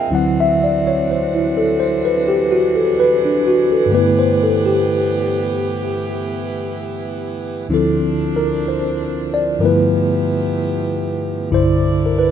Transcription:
Already playing: A#3 C4 F4 D#5 E5 F5 G5
0.10 D2 D3 E3 F#3 C4 D4 E4 F#4
0.15 F#5
0.40 E5
0.64 D5
0.87 C#5
1.11 C5
1.35 E4
1.57 A4
1.80 C5
2.05 B4
2.28 G4
2.52 F#4
2.76 A4
3.00 B4
3.25 D4
3.47 F#4
3.72 A4
3.86 G2 D3 B3
3.90 A3 B3 G4
3.95 E4 B4
4.19 C5
4.43 A4
4.65 G4
5.81 E4
7.69 D2 D3 F3 C4 D4 E4
7.74 A4
8.36 A#4
8.68 C5
9.34 D5
9.59 G2 D3 F3 A3 B3 E4 G4 A#4
9.63 B3 E4 B4
11.51 C2 G2 B2 D3 E4 C5 D5
12.06 A#4
12.19 B4

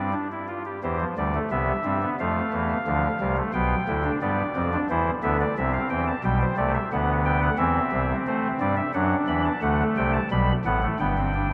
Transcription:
Already playing: G2 G3 C4 D5
0.13 D4
0.32 E4
0.48 F4
0.65 G4
0.83 E2 E3 G4 C5
1.00 F3
1.17 D2 D3 G3 D5
1.35 A3
1.51 C2 C3 B3 E5
1.85 G2 G3 C4
2.02 B3
2.20 F2 F3 A3 F5
2.53 E2 E3
2.87 D2 D3 F3
3.20 C2 C3 G3
3.37 A3
3.54 B1 B2 B3 G5
3.88 D2 D3 E4
4.04 D4
4.22 G2 G3 B3 D5
4.56 F2 F3 C4
4.73 D4
4.90 E2 E3 E4 C5
5.23 D2 D3 B3 E5
5.40 D5
5.57 C2 C3 C4 E5
5.73 F5
5.90 E2 E3 G5
6.07 A5
6.24 B1 B2 G3 G5
6.41 C5
6.57 C2 C3 A3 D5
6.74 E5
6.92 D2 D3 B3 F#5
7.25 G5
7.42 F#5
7.58 E2 E3 C4 E5
7.92 C2 C3
8.27 A3 C5
8.60 G2 G3 D5
8.77 E5
8.94 F#2 F#3 D4 F#5
9.28 E2 E3 B5
9.45 A5
9.62 D2 D3 A3 F#5
9.97 C2 C3 G5
10.13 A5
10.31 B1 B2 G3 B5
10.65 A1 A2 B3 F#5
10.83 A3
10.99 G1 G2 B3 G5
11.18 C4
11.34 D4

